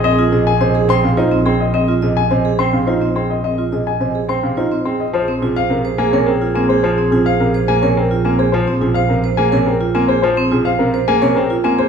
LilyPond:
<<
  \new Staff \with { instrumentName = "Grand piano" } { \time 3/4 \key aes \major \tempo 4 = 106 ees''16 r16 aes'16 aes''16 c''16 r16 c'''16 f''16 c''16 r16 c'''16 ees''16 | ees''16 r16 aes'16 aes''16 c''16 r16 c'''16 f''16 c''16 r16 c'''16 ees''16 | ees''16 r16 aes'16 aes''16 c''16 r16 c'''16 f''16 c''16 r16 c'''16 ees''16 | c''16 r16 aes'16 f''16 bes'16 r16 aes''16 des''16 bes'16 r16 aes''16 c''16 |
c''16 r16 aes'16 f''16 bes'16 r16 aes''16 des''16 bes'16 r16 aes''16 c''16 | c''16 r16 aes'16 f''16 bes'16 r16 aes''16 des''16 bes'16 r16 aes''16 c''16 | c''16 r16 aes'16 f''16 bes'16 r16 aes''16 des''16 bes'16 r16 aes''16 c''16 | }
  \new Staff \with { instrumentName = "Clarinet" } { \time 3/4 \key aes \major aes'2~ aes'8. r16 | r2. | r2. | aes'2.~ |
aes'2~ aes'8. r16 | r2. | r2. | }
  \new Staff \with { instrumentName = "Vibraphone" } { \time 3/4 \key aes \major c'16 f'16 ees''16 r16 ees''16 aes'16 c''16 r16 f'16 c'16 aes'16 r16 | c'16 f'16 ees''16 r16 ees''16 aes'16 c''16 r16 f'16 c'16 aes'16 r16 | c'16 f'16 ees''16 r16 ees''16 aes'16 c''16 r16 f'16 c'16 aes'16 r16 | r16 c'16 f'16 c''16 r16 c''16 aes'16 bes'16 r16 f'16 c'16 aes'16 |
r16 c'16 f'16 c''16 r16 c''16 aes'16 bes'16 r16 f'16 c'16 aes'16 | r16 c'16 f'16 c''16 r16 c''16 aes'16 bes'16 r16 f'16 c'16 aes'16 | r16 c'16 f'16 c''16 r16 c''16 aes'16 bes'16 r16 f'16 c'16 aes'16 | }
  \new Staff \with { instrumentName = "Grand piano" } { \clef bass \time 3/4 \key aes \major r8 c16 r16 c16 r16 c'16 c16 ees'16 r16 c'16 r16 | r8 c16 r16 c16 r16 c'16 c16 ees'16 r16 c'16 r16 | r8 c16 r16 c16 r16 c'16 c16 ees'16 r16 c'16 r16 | f16 r16 c16 r16 c16 r16 bes16 c16 c'16 r16 bes16 r16 |
f16 r16 c16 r16 c16 r16 bes16 c16 c'16 r16 bes16 r16 | f16 r16 c16 r16 c16 r16 bes16 c16 c'16 r16 bes16 r16 | f16 r16 c16 r16 c16 r16 bes16 c16 c'16 r16 bes16 r16 | }
  \new Staff \with { instrumentName = "Double bass" } { \clef bass \time 3/4 \key aes \major bes,,2.~ | bes,,2.~ | bes,,2. | bes,,2.~ |
bes,,2.~ | bes,,2.~ | bes,,2. | }
>>